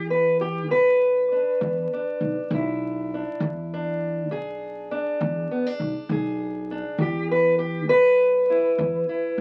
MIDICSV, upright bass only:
0, 0, Header, 1, 2, 480
1, 0, Start_track
1, 0, Tempo, 598802
1, 2733, Time_signature, 12, 3, 24, 8
1, 7542, End_track
2, 0, Start_track
2, 0, Title_t, "Upright bass"
2, 0, Program_c, 0, 32
2, 0, Note_on_c, 0, 40, 87
2, 561, Note_off_c, 0, 40, 0
2, 561, Note_on_c, 0, 35, 76
2, 1137, Note_off_c, 0, 35, 0
2, 1291, Note_on_c, 0, 40, 85
2, 1482, Note_off_c, 0, 40, 0
2, 1768, Note_on_c, 0, 35, 79
2, 1865, Note_off_c, 0, 35, 0
2, 2008, Note_on_c, 0, 35, 92
2, 2582, Note_off_c, 0, 35, 0
2, 2728, Note_on_c, 0, 40, 92
2, 3454, Note_off_c, 0, 40, 0
2, 3454, Note_on_c, 0, 35, 80
2, 4026, Note_off_c, 0, 35, 0
2, 4174, Note_on_c, 0, 40, 91
2, 4364, Note_off_c, 0, 40, 0
2, 4646, Note_on_c, 0, 35, 77
2, 4744, Note_off_c, 0, 35, 0
2, 4884, Note_on_c, 0, 35, 90
2, 5459, Note_off_c, 0, 35, 0
2, 5599, Note_on_c, 0, 40, 93
2, 6319, Note_off_c, 0, 40, 0
2, 6319, Note_on_c, 0, 35, 80
2, 6894, Note_off_c, 0, 35, 0
2, 7041, Note_on_c, 0, 40, 84
2, 7235, Note_off_c, 0, 40, 0
2, 7517, Note_on_c, 0, 35, 75
2, 7542, Note_off_c, 0, 35, 0
2, 7542, End_track
0, 0, End_of_file